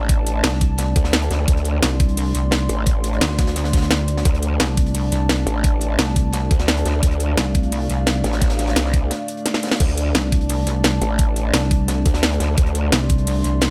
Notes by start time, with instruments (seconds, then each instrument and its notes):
Already playing: wobble bass A1, analog synth pad A3 D4 D5 A5
0.09 kick, closed hi-hat
0.27 closed hi-hat
0.43 wobble bass C2, snare, closed hi-hat
0.53 snare
0.61 kick, closed hi-hat
0.78 snare, closed hi-hat
0.96 wobble bass D2, kick, closed hi-hat
1.04 snare, closed hi-hat
1.13 snare, closed hi-hat
1.22 closed hi-hat
1.31 wobble bass D2, snare, closed hi-hat
1.48 wobble bass D2, analog synth pad C6, kick, closed hi-hat
1.57 closed hi-hat
1.65 closed hi-hat
1.83 wobble bass C2, snare, closed hi-hat
2.00 kick, closed hi-hat
2.09 closed hi-hat
2.17 closed hi-hat, open hi-hat
2.35 wobble bass C2, snare, closed hi-hat
2.51 snare, closed hi-hat
2.69 wobble bass A1, closed hi-hat
2.86 kick, closed hi-hat
3.04 closed hi-hat
3.13 closed hi-hat
3.21 wobble bass D2, snare, closed hi-hat
3.29 snare
3.38 kick, snare, closed hi-hat
3.47 snare, closed hi-hat
3.56 snare, closed hi-hat
3.64 snare, closed hi-hat
3.73 kick, snare, closed hi-hat
3.77 snare, closed hi-hat
3.82 snare, closed hi-hat
3.90 snare, closed hi-hat
4.08 closed hi-hat
4.17 snare, closed hi-hat
4.25 wobble bass D2, analog synth pad A5, kick, closed hi-hat
4.35 closed hi-hat
4.42 closed hi-hat
4.60 wobble bass C2, snare, closed hi-hat
4.77 kick, closed hi-hat
4.86 closed hi-hat
4.94 closed hi-hat, open hi-hat
5.12 wobble bass C2, snare, closed hi-hat
5.29 snare, closed hi-hat
5.47 wobble bass A1, closed hi-hat
5.64 kick, closed hi-hat
5.81 closed hi-hat
5.99 wobble bass C2, snare, closed hi-hat
6.07 snare
6.16 kick, closed hi-hat
6.33 snare, closed hi-hat
6.51 wobble bass D2, kick, closed hi-hat
6.59 snare, closed hi-hat
6.68 snare, closed hi-hat
6.77 closed hi-hat
6.85 wobble bass D2, snare, closed hi-hat
7.03 wobble bass D2, analog synth pad F5, kick, closed hi-hat
7.11 closed hi-hat
7.20 closed hi-hat
7.37 wobble bass C2, snare, closed hi-hat
7.54 kick, closed hi-hat
7.63 closed hi-hat
7.72 closed hi-hat, open hi-hat
7.90 wobble bass C2, snare, closed hi-hat
8.06 snare, closed hi-hat
8.24 wobble bass A1, snare, closed hi-hat
8.33 snare, closed hi-hat
8.41 kick, snare, closed hi-hat
8.50 snare, closed hi-hat
8.59 snare, closed hi-hat
8.67 snare, closed hi-hat
8.76 wobble bass C2, snare, closed hi-hat
8.85 snare
8.93 kick, closed hi-hat
9.11 snare, closed hi-hat
9.28 closed hi-hat
9.37 closed hi-hat
9.46 snare, closed hi-hat
9.54 snare
9.63 snare, closed hi-hat
9.67 snare, closed hi-hat
9.72 snare, closed hi-hat
9.75 snare, closed hi-hat
9.80 wobble bass D2, analog synth pad A5, kick, closed hi-hat, crash
9.89 closed hi-hat
9.97 closed hi-hat
10.15 wobble bass C2, snare, closed hi-hat
10.32 kick, closed hi-hat
10.41 closed hi-hat
10.49 closed hi-hat, open hi-hat
10.67 wobble bass C2, snare, closed hi-hat
10.84 snare, closed hi-hat
11.02 wobble bass A1, closed hi-hat
11.18 kick, closed hi-hat
11.36 closed hi-hat
11.54 wobble bass C2, snare, closed hi-hat
11.62 snare
11.71 kick, closed hi-hat
11.88 snare, closed hi-hat
12.05 wobble bass D2, kick, closed hi-hat
12.14 snare, closed hi-hat
12.23 snare, closed hi-hat
12.32 closed hi-hat
12.40 wobble bass D2, snare, closed hi-hat
12.57 wobble bass D2, analog synth pad C6, kick, closed hi-hat
12.66 closed hi-hat
12.75 closed hi-hat
12.92 wobble bass C2, snare, closed hi-hat
13.09 kick, closed hi-hat
13.18 closed hi-hat
13.27 closed hi-hat, open hi-hat
13.44 wobble bass C2, snare, closed hi-hat
13.61 snare, closed hi-hat